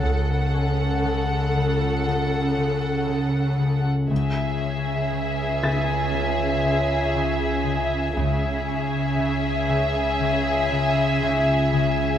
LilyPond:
<<
  \new Staff \with { instrumentName = "Felt piano" } { \time 4/4 \key cis \minor \tempo 4 = 59 <cis' cis''>2 r2 | r4. a'''2~ a'''8~ | a'''8 r2. r8 | }
  \new Staff \with { instrumentName = "Violin section" } { \time 4/4 \key cis \minor <a' fis''>1 | <gis' e''>1 | <gis' e''>1 | }
  \new Staff \with { instrumentName = "Cello section" } { \clef bass \time 4/4 \key cis \minor cis1 | cis1 | cis1 | }
  \new Staff \with { instrumentName = "Harp" } { \clef bass \time 4/4 \key cis \minor <cis cis'>8 cis'8 cis8 cis8 cis8 cis8 cis8 cis8 | cis8 cis'8 cis8 cis8 cis8 cis8 cis8 cis8 | cis8 cis'8 cis8 cis8 cis8 cis8 cis8 cis8 | }
  \new Staff \with { instrumentName = "Double bass section" } { \clef bass \time 4/4 \key cis \minor cis,4 r2. | cis,4 r2. | cis,4 r2. | }
  \new Staff \with { instrumentName = "Synth drone" } { \clef bass \time 4/4 \key cis \minor cis,1 | cis,1 | cis,1 | }
>>